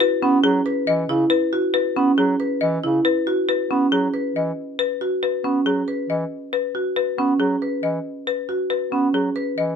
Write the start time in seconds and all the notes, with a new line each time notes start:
0.00 B4
0.22 B3 C#4
0.44 F#3 G#4
0.66 B4
0.87 E3 D#5
1.09 C#3 E4
1.30 B4
1.53 F#4
1.74 B4
1.96 B3 C#4
2.18 F#3 G#4
2.40 B4
2.61 E3 D#5
2.84 C#3 E4
3.05 B4
3.27 F#4
3.49 B4
3.71 B3 C#4
3.92 F#3 G#4
4.14 B4
4.35 E3 D#5
4.79 B4
5.01 F#4
5.23 B4
5.44 B3 C#4
5.66 F#3 G#4
5.88 B4
6.09 E3 D#5
6.53 B4
6.75 F#4
6.96 B4
7.18 B3 C#4
7.40 F#3 G#4
7.62 B4
7.83 E3 D#5
8.27 B4
8.49 F#4
8.70 B4
8.92 B3 C#4
9.14 F#3 G#4
9.36 B4
9.58 E3 D#5